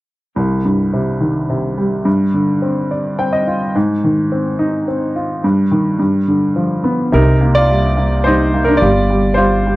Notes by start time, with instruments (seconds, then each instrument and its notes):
0.36 upright piano C2
0.65 upright piano G2
0.93 upright piano C3
1.21 upright piano D#3
1.50 upright piano C3
1.78 upright piano G3
2.05 upright piano G2
2.34 upright piano D3
2.62 upright piano C4
2.91 upright piano D5
3.19 upright piano C4 G5
3.33 upright piano D#5
3.47 upright piano F4
3.75 upright piano G#2
4.04 upright piano D#3
4.32 upright piano C4
4.59 upright piano D#4
4.88 upright piano C4
5.16 upright piano F4
5.44 upright piano G2
5.71 upright piano D#3
5.99 upright piano G2
6.28 upright piano D3
6.56 upright piano F3
6.84 upright piano B3
7.12 upright bass C2, upright piano C3 D#4 A#4
7.41 upright piano A#3
7.55 upright piano F4 D5
7.70 upright piano G3
7.97 upright piano A#3
8.24 upright piano G3 D#4 C5
8.54 upright piano A#3
8.64 upright piano D4 A#4
8.77 upright piano D5
8.81 upright bass G1, upright piano G3 F4
9.10 upright piano G3
9.34 upright piano F4 C5
9.38 upright piano G3
9.66 upright piano G3